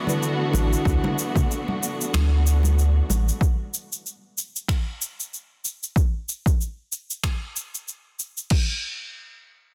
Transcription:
Already playing: string section E3 A3 B3 D4 F#4
0.06 tine electric piano D3 D4 E4 F#4 B4, high conga, shaker
0.23 shaker
0.51 sub bass A1, tine electric piano D3 D4 E4 F#4 B4, high conga
0.55 shaker
0.73 shaker
0.85 sub bass D2, kick, shaker
1.04 high conga, low conga
1.19 shaker
1.36 kick, low conga, shaker
1.51 shaker
1.68 high conga
1.83 shaker
2.01 shaker
2.14 sub bass D2, finger snap, high conga, shaker
2.47 shaker
2.63 high conga, shaker
2.79 shaker
3.09 sub bass A1, high conga, shaker
3.29 shaker
3.41 kick, shaker
3.74 shaker
3.93 shaker
4.06 shaker
4.38 shaker
4.56 shaker
4.68 finger snap, kick, shaker
5.02 shaker
5.20 shaker
5.34 shaker
5.65 shaker
5.83 shaker
5.96 kick, shaker
6.29 shaker
6.46 kick, shaker
6.61 shaker
6.92 shaker
7.11 shaker
7.23 finger snap, kick, shaker
7.56 shaker
7.75 shaker
7.88 shaker
8.20 shaker
8.37 shaker
8.50 kick, crash

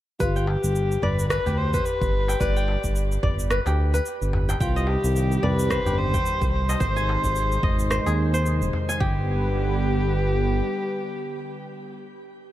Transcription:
0.20 analog synth bass G1, kamancheh F4, singing bowl G4, kora B4, kick, cabasa
0.36 kora G5, cabasa
0.47 kamancheh G4, darbuka tek
0.64 analog synth bass G1, cabasa
0.76 cabasa
0.91 darbuka ka, cabasa
1.02 analog synth bass G1, kamancheh B4, kora D5, darbuka dum
1.19 cabasa
1.30 kamancheh B4, kora B4, kick, cross-stick, darbuka ka, cabasa
1.46 analog synth bass D2, kora G4, darbuka dum, cabasa
1.58 kamancheh C5, darbuka tek
1.73 kora B4, kick, darbuka dum, cabasa
1.85 kamancheh B4, darbuka ka, cabasa
2.02 analog synth bass G1, kick, cabasa
2.28 kora G5, darbuka tek, cabasa
2.40 analog synth bass G1, kora B4, kamancheh D5, kick, cabasa
2.57 kora G5, cabasa
2.68 darbuka ka, darbuka tek
2.84 analog synth bass G1, kick, cabasa
2.96 cabasa
3.12 darbuka ka, cabasa
3.23 analog synth bass G1, kora D5, kick, darbuka dum
3.39 cabasa
3.50 kora B4, cross-stick, cabasa
3.66 analog synth bass D2, kora G4, darbuka tek, cabasa
3.94 kora B4, cabasa
4.06 cabasa
4.21 analog synth bass G1, cabasa
4.33 darbuka tek, darbuka dum
4.49 kora G5, darbuka tek, cabasa
4.60 analog synth bass C2, analog synth pad C3 D#3 G3 G4, kamancheh F4, kora G5, kick, cabasa
4.76 kora D#5, cabasa
4.87 kamancheh G4, darbuka tek
5.04 analog synth bass C2, cabasa
5.16 cabasa
5.31 darbuka ka, cabasa
5.43 analog synth bass C2, kamancheh B4, kora D5, darbuka dum
5.59 cabasa
5.70 kora C5, kick, cross-stick, cabasa
5.86 analog synth bass G1, kora G4, darbuka dum, cabasa
5.98 kamancheh C5, darbuka tek
6.14 kora G5, kick, darbuka dum, cabasa
6.26 darbuka ka, cabasa
6.42 analog synth bass C2, kick, cabasa
6.53 kamancheh C5
6.69 kora D#5, darbuka tek, cabasa
6.80 analog synth bass G#1, analog synth pad C3 D#3 G#3 D#4 C5, kora C5, kick, cabasa
6.96 kora G#5, cabasa
7.08 darbuka ka, darbuka tek
7.24 analog synth bass G#1, kick, cabasa
7.36 cabasa
7.52 darbuka ka, cabasa
7.63 analog synth bass G#1, kora D#5, kick, darbuka dum
7.79 cabasa
7.90 kora C5, cross-stick, cabasa
8.06 analog synth bass D#2, kora G#4, darbuka tek, cabasa
8.34 kora C5, cabasa
8.46 cabasa
8.61 analog synth bass D#1, cabasa
8.73 darbuka tek, darbuka dum
8.89 kora G#5, darbuka tek, cabasa
9.00 analog synth bass G1, analog synth pad D3 G3 B3 G4 B4, kora G4, kamancheh G4, kick

